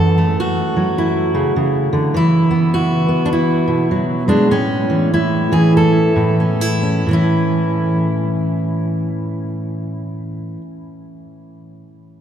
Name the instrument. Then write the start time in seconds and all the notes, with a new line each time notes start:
steel-string acoustic guitar
Already playing: F#2 A4
0.18 A3
0.40 F#4
0.76 F#3
0.98 E4
1.35 C#3
1.56 C#3
1.93 D3
2.14 E3 E4
2.51 B3
2.74 F#4
3.08 B3
3.26 D4
3.33 E4
3.68 B2
3.91 F#3
4.28 G#3 D4
4.51 A2 C#4
4.90 E3
5.14 E4
5.52 E3 G#4
5.77 A4
6.16 A2
6.40 C#4
6.61 E4
6.83 C#4
7.06 A2 E3
7.11 C#4 E4